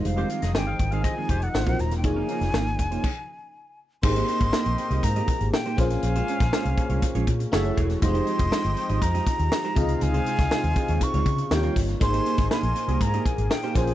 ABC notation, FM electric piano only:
X:1
M:4/4
L:1/8
Q:1/4=120
K:Ab
V:1 name="FM electric piano"
[G,A,EFc]6 [B,EF_Gc]2 | [B,EFAd]4 z4 | [B,EGAc]6- [B,EGAc] [B,DFAc]- | [B,DFAc]6 [=A,_F_G_Ad]2 |
[G,A,EFGc]6- [G,A,EFGc] [C,EFAe]- | [C,EFAe]6 [B,EFGd]2 | [B,EABc]6- [B,EABc] [B,DFAc] |]